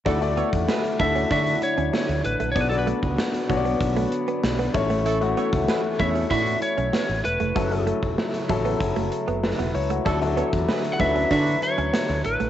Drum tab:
HH |xxxx-xxxxxxx-xxx|xxxx-xxxxxxx-xxx|xxxx-xxxxxxx-xxx|xxxx-xxxxxxx-xox|
SD |----o-------o---|----o-------o---|----o-------o---|----o-------o---|
BD |o--o--o-o-------|o--o--o-o-----o-|---o--o-o-------|o--o--o-o-------|

HH |xxxx-xxxxxxx-xxx|
SD |----o-------o---|
BD |o--o--o-o-------|